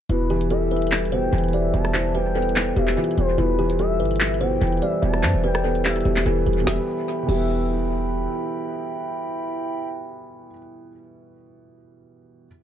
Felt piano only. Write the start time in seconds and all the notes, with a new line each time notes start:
0.10 B2
0.30 E3
0.51 G3
1.12 B2
1.33 E3
1.53 G3
1.73 B2
1.94 E3
2.15 G3
2.36 B3
2.77 B2
2.97 E3
3.18 G3
3.38 B2
3.59 E3
3.79 G3
4.41 B2
4.62 E3
4.82 G3
5.02 B2
5.23 E3
5.44 G3
5.64 B3
6.05 B2
6.26 E3
6.46 G3
6.61 B2
6.65 E3 G3
6.73 B3
7.23 B2
7.27 E3 G3
7.35 B3